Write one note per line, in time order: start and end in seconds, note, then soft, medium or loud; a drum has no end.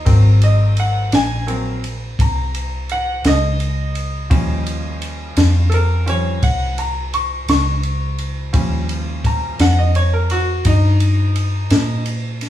0.05 1.09 G#1 medium
0.05 1.08 F#3 soft
0.05 1.08 A#3 soft
0.05 1.09 C4 soft
0.05 kick loud
0.05 ride medium
0.42 0.77 D#5 medium
0.42 ride medium
0.77 1.13 F#5 medium
0.77 ride medium
1.12 2.16 A#1 medium
1.12 1.48 G#5 medium
1.12 snare loud
1.12 ride medium
1.47 1.79 F#3 soft
1.47 1.80 A#3 soft
1.47 1.80 C4 soft
1.47 ride medium
1.84 ride medium
2.19 3.22 C2 medium
2.19 2.89 A#5 medium
2.19 kick medium
2.19 ride medium
2.55 ride medium
2.89 3.25 F#5 medium
2.89 ride medium
3.24 4.28 C#2 loud
3.24 5.34 D#5 medium
3.24 snare loud
3.24 ride medium
3.60 ride medium
3.95 ride medium
4.30 5.34 D#2 medium
4.30 6.05 F3 soft
4.30 6.05 G3 soft
4.30 6.06 C#4 medium
4.30 kick loud
4.30 ride medium
4.67 ride medium
5.02 ride medium
5.37 6.40 F2 loud
5.37 snare loud
5.37 ride medium
5.70 5.73 A4 medium
5.70 ride medium
5.74 6.07 A#4 medium
6.06 6.39 F3 soft
6.06 6.39 G3 soft
6.06 6.39 C#4 soft
6.06 6.43 C#5 medium
6.06 ride medium
6.43 7.45 C2 medium
6.43 6.77 F#5 medium
6.43 kick medium
6.43 ride medium
6.78 7.13 A#5 medium
6.78 ride medium
7.14 7.48 C#6 medium
7.14 ride medium
7.48 8.51 C#2 medium
7.48 8.86 C#6 medium
7.48 snare loud
7.48 ride medium
7.83 ride medium
8.18 ride medium
8.53 9.57 D#2 medium
8.53 9.55 F3 soft
8.53 9.56 G3 soft
8.53 9.56 C#4 medium
8.53 kick loud
8.53 ride medium
8.89 ride medium
9.24 9.60 A#5 medium
9.24 kick medium
9.24 ride medium
9.59 10.62 F2 medium
9.59 9.77 F#5 medium
9.59 snare loud
9.59 ride medium
9.79 9.95 D#5 medium
9.95 10.12 C#5 medium
9.95 ride medium
10.14 10.30 A#4 medium
10.30 10.65 F#4 medium
10.30 ride medium
10.65 11.68 G2 medium
10.65 12.03 D#4 medium
10.65 kick medium
10.65 ride medium
11.00 ride medium
11.36 ride medium
11.70 12.49 A#2 medium
11.70 snare loud
11.70 ride medium
12.06 ride medium
12.41 snare soft
12.41 ride medium